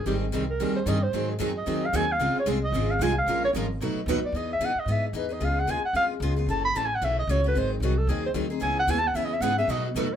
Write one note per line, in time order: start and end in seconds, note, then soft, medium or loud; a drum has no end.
0.06 0.31 G#1 medium
0.06 0.24 D#3 medium
0.06 0.25 G3 medium
0.06 0.25 C4 medium
0.06 0.25 D#4 medium
0.06 0.16 G4 medium
0.06 0.25 G#4 medium
0.32 0.58 C2 medium
0.32 0.43 D#3 medium
0.32 0.43 G3 medium
0.32 0.43 C4 medium
0.32 0.43 D#4 medium
0.32 0.44 G#4 medium
0.50 0.74 A#4 medium
0.59 0.85 D#2 medium
0.59 0.78 D#3 medium
0.59 0.78 G3 medium
0.59 0.78 C4 medium
0.59 0.79 D#4 medium
0.59 0.79 G#4 medium
0.76 0.90 C5 medium
0.86 1.12 G2 loud
0.86 0.97 D#3 medium
0.86 0.97 G3 medium
0.86 0.97 C4 medium
0.86 0.97 D#4 medium
0.86 0.97 G#4 medium
0.86 1.05 D#5 medium
1.03 1.29 C5 medium
1.12 1.38 G#2 medium
1.12 1.32 D#3 medium
1.12 1.32 F#3 medium
1.12 1.32 C4 medium
1.12 1.32 D#4 medium
1.12 1.32 G#4 medium
1.32 1.36 G#4 medium
1.39 1.66 F#2 medium
1.39 1.50 D#3 medium
1.39 1.50 F#3 medium
1.39 1.50 C4 medium
1.39 1.50 D#4 medium
1.39 1.50 G#4 medium
1.57 1.87 D#5 medium
1.66 1.92 F2 medium
1.66 1.85 D#3 medium
1.66 1.85 F#3 medium
1.66 1.85 C4 medium
1.66 1.85 D#4 medium
1.66 1.86 G#4 medium
1.85 1.98 F5 medium
1.93 2.19 D#2 loud
1.93 2.04 D#3 medium
1.93 2.04 F#3 medium
1.93 2.04 C4 medium
1.93 2.04 D#4 medium
1.93 2.04 G#4 medium
1.93 2.14 G#5 medium
2.12 2.37 F5 medium
2.19 2.34 C#2 medium
2.19 2.39 C#3 medium
2.19 2.39 G#3 medium
2.19 2.39 C4 medium
2.19 2.39 F4 medium
2.19 2.39 G#4 medium
2.35 muted upright bass stroke soft
2.40 2.48 C#5 medium
2.46 2.72 C2 medium
2.46 2.57 C#3 medium
2.46 2.57 G#3 medium
2.46 2.57 C4 medium
2.46 2.57 F4 loud
2.46 2.58 G#4 medium
2.64 2.92 D#5 medium
2.72 2.99 G#1 medium
2.72 2.92 C#3 medium
2.72 2.93 G#3 medium
2.72 2.93 C4 medium
2.72 2.93 F4 medium
2.72 2.93 G#4 medium
2.90 3.04 F5 medium
2.99 3.26 C2 loud
2.99 3.11 C#3 medium
2.99 3.11 G#3 medium
2.99 3.11 C4 medium
2.99 3.11 F4 medium
2.99 3.11 G#4 loud
2.99 3.17 G#5 medium
3.18 3.42 F5 medium
3.26 3.52 A#1 medium
3.26 3.46 F3 medium
3.26 3.46 G#3 medium
3.26 3.47 C#4 medium
3.26 3.47 F4 medium
3.26 3.47 A#4 medium
3.44 3.51 C#5 loud
3.53 3.79 G#1 medium
3.53 3.65 F3 medium
3.53 3.65 G#3 medium
3.53 3.66 C#4 medium
3.53 3.66 F4 medium
3.57 3.66 A#4 medium
3.80 3.94 B1 medium
3.80 3.99 B2 medium
3.80 4.00 F#3 medium
3.80 4.00 A3 medium
3.80 4.00 D#4 medium
3.80 4.00 F#4 medium
3.80 4.00 B4 medium
3.95 muted upright bass stroke soft
4.06 4.21 D#2 loud
4.06 4.18 B2 medium
4.06 4.18 F#3 medium
4.06 4.19 A3 medium
4.06 4.19 D#4 medium
4.06 4.18 B4 loud
4.10 4.19 F#4 loud
4.22 4.38 D5 medium
4.22 muted upright bass stroke soft
4.32 4.59 E2 medium
4.32 4.53 E3 medium
4.32 4.53 B3 medium
4.32 4.54 D#4 medium
4.37 4.54 G#4 medium
4.37 4.51 D#5 medium
4.53 4.66 E5 medium
4.59 4.74 F#2 medium
4.59 4.71 E3 medium
4.59 4.71 B3 medium
4.59 4.71 D#4 medium
4.59 4.71 G#4 medium
4.65 4.81 F#5 medium
4.75 muted upright bass stroke soft
4.79 4.93 D#5 medium
4.86 5.12 G#2 medium
4.86 5.06 E3 medium
4.86 5.06 B3 medium
4.86 5.07 D#4 medium
4.86 5.07 G#4 medium
4.92 5.05 E5 medium
5.07 5.19 G#4 soft
5.13 5.40 E2 medium
5.13 5.24 E3 medium
5.13 5.25 B3 medium
5.13 5.25 D#4 medium
5.13 5.25 G#4 medium
5.18 5.34 B4 medium
5.29 5.40 B3 soft
5.29 5.41 D#4 medium
5.29 5.40 G#4 medium
5.29 5.46 D#5 medium
5.40 5.66 C#2 medium
5.40 5.59 C#3 medium
5.40 5.59 G#3 medium
5.40 5.59 B3 medium
5.40 5.60 F4 medium
5.40 5.60 G#4 medium
5.44 5.61 F5 medium
5.59 5.72 F#5 loud
5.67 5.82 D#2 medium
5.67 5.78 C#3 medium
5.67 5.78 G#3 medium
5.67 5.78 B3 medium
5.67 5.79 F4 medium
5.67 5.79 G#4 medium
5.67 5.85 G#5 medium
5.83 5.95 F#5 medium
5.83 muted upright bass stroke soft
5.93 6.19 F2 medium
5.93 6.13 C#3 medium
5.93 6.13 G#3 medium
5.93 6.13 B3 medium
5.93 6.14 F4 medium
5.93 6.13 G#4 medium
5.93 6.05 F5 medium
6.20 6.46 C#2 loud
6.20 6.32 C#3 medium
6.20 6.32 G#3 medium
6.20 6.32 B3 medium
6.20 6.33 F4 loud
6.20 6.32 G#4 medium
6.36 6.48 B3 soft
6.36 6.48 F4 medium
6.36 6.47 G#4 medium
6.46 6.73 F#1 medium
6.46 6.67 C#3 medium
6.46 6.67 E3 medium
6.46 6.67 A3 medium
6.46 6.67 C#4 medium
6.46 6.68 F#4 medium
6.46 6.64 A5 medium
6.65 6.78 B5 loud
6.73 7.00 A1 medium
6.73 6.85 C#3 medium
6.73 6.86 E3 medium
6.73 6.86 A3 medium
6.73 6.86 C#4 medium
6.73 6.86 F#4 medium
6.73 6.87 A5 medium
6.85 6.96 G#5 medium
6.95 7.06 F#5 medium
7.01 7.27 B1 medium
7.01 7.20 C#3 medium
7.01 7.20 E3 medium
7.01 7.21 A3 medium
7.01 7.20 C#4 medium
7.01 7.21 F#4 medium
7.01 7.18 E5 medium
7.19 7.32 D#5 medium
7.27 7.54 C#2 medium
7.27 7.39 C#3 medium
7.27 7.39 E3 medium
7.27 7.39 A3 medium
7.27 7.39 C#4 medium
7.27 7.40 F#4 medium
7.27 7.45 C#5 medium
7.44 7.56 A3 soft
7.44 7.55 C#4 soft
7.44 7.55 F#4 medium
7.44 7.60 B4 medium
7.54 7.79 G#1 medium
7.54 7.74 D#3 medium
7.54 7.74 F#3 medium
7.54 7.74 C4 medium
7.54 7.75 D#4 medium
7.54 7.74 G#4 medium
7.58 7.72 C5 medium
7.73 7.85 D#4 soft
7.80 8.06 C2 medium
7.80 7.92 D#3 medium
7.80 7.93 F#3 medium
7.80 7.93 C4 medium
7.80 7.93 D#4 medium
7.80 8.00 F#4 medium
7.80 7.93 G#4 medium
7.98 8.11 A4 medium
8.07 8.34 D#2 medium
8.07 8.27 D#3 medium
8.07 8.27 F#3 medium
8.07 8.27 C4 medium
8.07 8.28 D#4 medium
8.07 8.24 G#4 medium
8.07 8.28 G#4 medium
8.26 8.32 C5 medium
8.34 8.60 D2 loud
8.34 8.45 D#3 medium
8.34 8.45 F#3 medium
8.34 8.45 C4 medium
8.34 8.46 D#4 medium
8.34 8.46 G#4 medium
8.50 8.60 C4 soft
8.50 8.61 D#4 soft
8.50 8.61 G#4 medium
8.60 8.86 C#2 medium
8.60 8.79 C#3 medium
8.60 8.80 E3 medium
8.60 8.80 G#3 medium
8.60 8.80 B3 medium
8.60 8.80 C#4 medium
8.60 8.80 E4 medium
8.60 8.80 G#4 medium
8.60 8.77 G#5 medium
8.79 8.92 F#5 loud
8.87 9.13 D#2 medium
8.87 8.99 C#3 medium
8.87 8.99 E3 medium
8.87 8.99 G#3 medium
8.87 8.99 B3 medium
8.87 8.99 C#4 loud
8.87 8.99 E4 medium
8.87 8.99 G#4 medium
8.87 9.00 G#5 medium
8.98 9.09 A5 loud
9.07 9.17 F#5 medium
9.14 9.40 E2 medium
9.14 9.34 C#3 medium
9.14 9.34 E3 medium
9.14 9.34 G#3 medium
9.14 9.34 B3 medium
9.14 9.34 C#4 medium
9.14 9.34 E4 medium
9.14 9.34 G#4 medium
9.14 9.26 E5 medium
9.25 9.35 D#5 medium
9.33 9.43 E5 medium
9.40 9.67 G#2 loud
9.40 9.53 C#3 medium
9.40 9.53 E3 medium
9.40 9.52 G#3 medium
9.40 9.53 B3 medium
9.40 9.53 C#4 medium
9.40 9.53 E4 loud
9.40 9.53 G#4 medium
9.40 9.57 F#5 loud
9.58 9.69 B3 medium
9.58 9.69 C#4 medium
9.58 9.69 G#4 medium
9.58 9.72 E5 medium
9.68 9.94 B2 medium
9.68 9.88 B2 medium
9.68 9.88 F#3 medium
9.68 9.88 A3 medium
9.68 9.88 D#4 medium
9.68 9.88 F#4 medium
9.68 9.88 B4 medium
9.68 9.85 D#5 medium
9.87 9.99 F#4 soft
9.95 10.16 E2 medium
9.95 10.06 B2 medium
9.95 10.06 F#3 medium
9.95 10.06 A3 medium
9.95 10.06 D#4 medium
9.95 10.07 F#4 loud
9.95 10.15 A4 medium
9.95 10.07 B4 medium